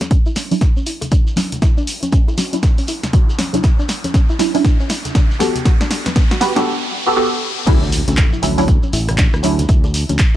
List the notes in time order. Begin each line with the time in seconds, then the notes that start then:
Already playing: riser
0.01 C#4, snare, closed hi-hat, high bongo, high conga, shekere
0.11 C#4, kick, closed hi-hat, shekere
0.26 E4, shekere
0.36 F#3 C#4 D4 E4, snare, open hi-hat, shekere
0.51 F#3 C#4 D4 E4, open hi-hat, shekere
0.61 kick, snare, closed hi-hat, shekere
0.77 C#4, shekere
0.86 E4, open hi-hat, shekere
1.01 closed hi-hat, high bongo, low conga, shekere
1.11 D4, kick, closed hi-hat, low conga, shekere
1.27 shekere
1.36 F#3 C#4 D4 E4, snare, open hi-hat, high conga, shekere
1.52 closed hi-hat, low conga, shekere
1.62 E4, kick, snare, closed hi-hat, shekere
1.77 D4, shekere
1.87 open hi-hat, shekere
2.02 C#4, closed hi-hat, high conga, shekere
2.12 C#4, kick, closed hi-hat, shekere
2.28 E4, high bongo, shekere
2.37 F#3 C#4 D4 F#4, snare, open hi-hat, shekere
2.52 F#3 C#4 D4 E4, closed hi-hat, shekere
2.63 kick, snare, closed hi-hat, shekere
2.78 C#4, open hi-hat, shekere
2.88 E4, open hi-hat, high bongo, shekere
3.03 snare, closed hi-hat, low conga, shekere
3.13 F#3 C#4 D4 F#4, kick, closed hi-hat, low conga, shekere
3.30 high bongo, shekere
3.39 C#4, snare, open hi-hat, high conga, shekere
3.53 F#3 C#4 D4 E4, closed hi-hat, low conga, shekere
3.63 E4, kick, snare, closed hi-hat, shekere
3.79 D4, shekere
3.89 snare, open hi-hat, shekere
4.04 C#4, closed hi-hat, high bongo, high conga, shekere
4.14 C#4, kick, snare, closed hi-hat, shekere
4.29 E4, shekere
4.39 F#3 C#4 D4 E4, snare, open hi-hat, shekere
4.54 F#3 C#4 D4 E4, open hi-hat, shekere
4.65 kick, snare, closed hi-hat, shekere
4.80 C#4, shekere
4.90 E4, snare, open hi-hat, shekere
5.05 closed hi-hat, high bongo, low conga, shekere
5.15 D4, kick, snare, closed hi-hat, low conga, shekere
5.31 shekere
5.39 B3 F#4 G4 A4, snare, open hi-hat, high conga, shekere
5.55 closed hi-hat, low conga, shekere
5.65 F#4, kick, snare, closed hi-hat, shekere
5.81 D4, snare, shekere
5.91 snare, open hi-hat, shekere
6.06 B3, snare, closed hi-hat, high conga, shekere
6.16 B3, kick, snare, closed hi-hat, shekere
6.31 F#4, snare, high bongo, shekere
6.41 B3 F#4 G4 B4, snare, open hi-hat, shekere
6.56 B3 D4 F#4 G4 A4, snare, closed hi-hat, shekere
7.06 B3 F#4 G4 A4
7.16 B3 F#4 G4 A4
7.66 D2 F#3 C#4 D4 E4, kick, closed hi-hat, crash, impact, high bongo, shekere
7.83 D4, shekere
7.92 open hi-hat, shekere
8.08 D2 C#4, closed hi-hat, high bongo, high conga, shekere
8.17 kick, clap, closed hi-hat, shekere
8.33 E4, shekere
8.42 D2 F#3 C#4 D4 E4, open hi-hat, shekere
8.58 F#3 C#4 D4 E4, open hi-hat, high bongo, shekere
8.68 kick, closed hi-hat, shekere
8.83 C#4, shekere
8.93 A1 E4, open hi-hat, high bongo, high conga, shekere
9.08 cross-stick, closed hi-hat, low conga, shekere
9.18 D4, kick, clap, closed hi-hat, low conga, shekere
9.34 D2, cross-stick, shekere
9.43 F#3 C#4 D4 E4, open hi-hat, high bongo, shekere
9.59 closed hi-hat, low conga, shekere
9.69 D2 E4, kick, closed hi-hat, shekere
9.84 D4, high bongo, shekere
9.94 open hi-hat, shekere
10.09 D2 C#4, closed hi-hat, high conga, shekere
10.19 kick, clap, closed hi-hat, shekere